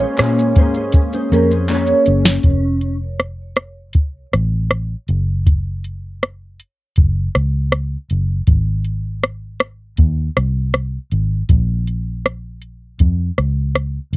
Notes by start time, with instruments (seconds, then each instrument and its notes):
Already playing: analog synth pad G#3 A#3 C#4, upright piano A#3 C#4 G#4 C#5
0.00 clean electric guitar C#4 G#4 C5
0.17 fingered electric bass A#2, clean electric guitar A#3 C#4 G#4 C5, cross-stick, clap, closed hi-hat, shaker
0.39 shaker
0.55 fingered electric bass G#2, clean electric guitar A#3 C#4 G#4 C5, kick, closed hi-hat, shaker
0.74 clean electric guitar G#4 C5, shaker
0.78 clean electric guitar C#4
0.92 kick, closed hi-hat, shaker
1.13 clean electric guitar C#4 G#4 C5, shaker
1.32 fingered electric bass F2, clean electric guitar A#3 C#4 G#4 C5, vibraphone A#4, closed hi-hat, shaker
1.51 clean electric guitar C#4 G#4 C5, shaker
1.68 clean electric guitar A#3 C#4 G#4, vibraphone C#5, clap, closed hi-hat, shaker
1.87 shaker
2.06 fingered electric bass F#1, closed hi-hat, shaker
2.25 snare, shaker
2.43 fingered electric bass F1, kick, closed hi-hat
2.81 closed hi-hat
3.20 cross-stick, closed hi-hat
3.56 cross-stick, closed hi-hat
3.93 fingered electric bass C2, kick, closed hi-hat
4.34 fingered electric bass A1, cross-stick, closed hi-hat
4.71 cross-stick, closed hi-hat
5.08 fingered electric bass F#1, closed hi-hat
5.47 kick, closed hi-hat
5.84 closed hi-hat
6.23 cross-stick, closed hi-hat
6.60 closed hi-hat
6.96 fingered electric bass F#1, kick, closed hi-hat
7.35 fingered electric bass C#2, cross-stick, closed hi-hat
7.72 cross-stick, closed hi-hat
8.10 fingered electric bass F#1, closed hi-hat
8.47 fingered electric bass G#1, kick, closed hi-hat
8.85 closed hi-hat
9.24 cross-stick, closed hi-hat
9.60 cross-stick, closed hi-hat
9.97 fingered electric bass D#2, kick, closed hi-hat
10.37 fingered electric bass C2, cross-stick, closed hi-hat
10.74 cross-stick, closed hi-hat
11.11 fingered electric bass G#1, closed hi-hat
11.49 fingered electric bass A#1, kick, closed hi-hat
11.87 closed hi-hat
12.25 cross-stick, closed hi-hat
12.61 closed hi-hat
12.99 fingered electric bass F2, kick, closed hi-hat
13.38 fingered electric bass C#2, cross-stick, closed hi-hat
13.75 cross-stick, closed hi-hat
14.13 fingered electric bass F#1, closed hi-hat